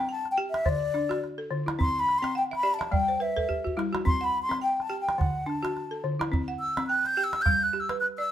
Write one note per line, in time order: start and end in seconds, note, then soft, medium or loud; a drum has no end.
0.00 0.25 C4 medium
0.09 0.36 G5 medium
0.09 0.28 A5 medium
0.25 calabash click soft
0.31 0.37 G5 medium
0.37 0.66 G4 medium
0.37 0.82 G5 medium
0.50 0.70 E5 medium
0.54 calabash click medium
0.66 0.94 D3 medium
0.66 1.24 D5 medium
0.66 calabash thump medium
0.66 calabash click soft
0.94 1.38 D4 medium
0.94 calabash click soft
1.09 1.38 F#4 medium
1.09 calabash click soft
1.24 calabash click soft
1.38 1.79 A4 medium
1.51 1.79 D3 medium
1.66 1.95 E4 medium
1.66 calabash click medium
1.79 2.07 C4 medium
1.79 2.01 C6 loud
1.79 calabash thump medium
1.99 2.20 B5 loud
2.09 calabash click soft
2.18 2.36 C6 loud
2.22 2.51 C4 medium
2.22 2.49 G5 medium
2.22 calabash click medium
2.35 2.62 F#5 medium
2.35 2.43 G5 medium
2.51 2.78 E5 medium
2.51 calabash click soft
2.55 2.75 B5 medium
2.63 2.92 G4 medium
2.63 2.90 D5 medium
2.74 2.93 A5 medium
2.79 3.06 E5 medium
2.79 calabash click medium
2.91 3.20 G3 medium
2.91 3.18 D5 medium
2.91 3.23 G5 loud
2.91 calabash thump medium
3.08 3.35 C5 medium
3.20 3.35 B4 medium
3.20 3.78 E5 medium
3.36 3.63 A4 medium
3.36 3.65 B4 medium
3.36 calabash thump soft
3.49 3.75 G4 medium
3.49 calabash thump soft
3.64 3.91 F#4 medium
3.64 calabash thump soft
3.77 4.06 G3 medium
3.77 4.03 E4 medium
3.77 calabash click medium
3.93 4.19 F#4 medium
3.93 calabash click medium
4.05 4.34 C4 medium
4.05 4.26 C6 loud
4.05 calabash thump medium
4.21 4.62 F#5 medium
4.21 4.42 B5 loud
4.42 4.60 C6 loud
4.49 4.78 C4 medium
4.49 calabash click soft
4.62 4.88 G5 medium
4.62 4.83 G5 medium
4.80 5.00 A5 loud
4.80 calabash click soft
4.89 5.19 G4 medium
4.89 5.34 G5 medium
5.01 5.20 G5 medium
5.09 calabash click medium
5.18 5.47 D3 medium
5.18 5.48 F#5 medium
5.18 calabash thump medium
5.18 calabash click soft
5.46 5.91 D4 medium
5.46 6.04 A5 medium
5.46 calabash click soft
5.63 5.91 F#4 medium
5.63 calabash click medium
5.77 calabash click soft
5.91 6.32 A4 medium
6.04 6.32 D3 medium
6.20 6.48 E4 medium
6.20 calabash click medium
6.32 6.60 C4 medium
6.32 calabash thump medium
6.48 6.89 F#5 medium
6.59 6.86 E6 medium
6.77 7.05 C4 medium
6.77 calabash click medium
6.87 7.16 G5 medium
6.87 7.07 F#6 medium
7.05 7.25 G6 loud
7.05 calabash click soft
7.17 7.46 G4 medium
7.17 7.61 G5 medium
7.24 7.43 E6 loud
7.33 calabash click medium
7.42 7.64 G6 loud
7.46 7.74 G3 medium
7.46 calabash thump medium
7.46 calabash click soft
7.63 7.81 F#6 loud
7.73 8.18 G4 medium
7.73 calabash click soft
7.80 7.99 E6 medium
7.89 8.18 B4 medium
7.89 calabash click medium
8.00 8.06 F#6 medium
8.00 calabash click soft
8.18 8.32 D5 medium
8.18 8.32 E6 medium